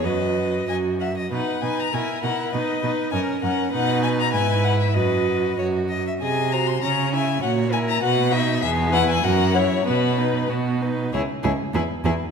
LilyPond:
<<
  \new Staff \with { instrumentName = "Violin" } { \time 2/4 \key b \major \tempo 4 = 98 dis''4 gis''8 fis''8 | fis''8 gis''16 ais''16 gis''8 fis''8 | dis''4 gis''8 fis''8 | fis''8 gis''16 ais''16 gis''8 fis''16 e''16 |
dis''4 r4 | gis''8 ais''16 bis''16 ais''8 gis''8 | fis''8 gis''16 ais''16 fis''8 e''8 | e''8 fis''16 gis''16 fis''8 cis''8 |
b'4 r4 | \key cis \minor cis''8 cis''8 b'8 b'8 | }
  \new Staff \with { instrumentName = "Violin" } { \time 2/4 \key b \major b'4 dis''8 e''16 dis''16 | b'8 b'8 ais'8 ais'8 | b'8 b'8 ais'8 ais'8 | b'4 b'4 |
b'4 cis''8 dis''16 e''16 | dis''8 bis'8 cis''8 e''8 | cis''8 ais'8 b'8 dis''8 | gis'8 b'8 ais'8 cis''8 |
fis'8 b'8 fis'8 b'8 | \key cis \minor gis'8 gis'8 gis'8 gis'8 | }
  \new Staff \with { instrumentName = "Viola" } { \time 2/4 \key b \major fis'4 fis'8 r8 | dis'8 dis'8 e'8 e'8 | dis'8 dis'8 cis'8 cis'8 | dis'4 e'4 |
fis'4 fis'8 r8 | gis'8 fis'8 cis'8 e'8 | fis'8 e'8 fis'8 dis'8 | b8 e'8 fis'8 e'8 |
b8 dis'8 b8 dis'8 | \key cis \minor e'8 e'8 e'8 e'8 | }
  \new Staff \with { instrumentName = "Cello" } { \clef bass \time 2/4 \key b \major fis,4 fis,4 | b,8 b,8 b,8 b,8 | b,8 b,8 fis,8 fis,8 | b,4 gis,4 |
fis,4 fis,8 r8 | bis,4 cis4 | ais,4 b,4 | e,4 fis,4 |
b,4 b,4 | \key cis \minor cis,8 cis,8 e,8 e,8 | }
>>